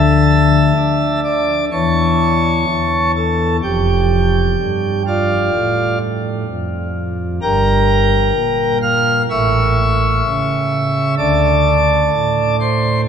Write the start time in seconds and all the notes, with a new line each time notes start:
Already playing: D2 D3 E5 A5 E6
0.76 D4
1.23 D5 D6
1.72 E2 E3 C#5 A5 C#6
2.67 E2
3.16 A4 A5
3.62 F1 F2 G4 G5
4.59 G2
5.06 F4 D5 F5
5.53 A2
6.48 F2
7.41 G1 G2 A#4 G5 A#5
8.34 A#2
8.82 F5 F6
9.30 A1 A2 E5 C#6 E6
10.24 C#3
11.17 D2 D3 D5 A5 D6
12.12 A2
12.60 C5 C6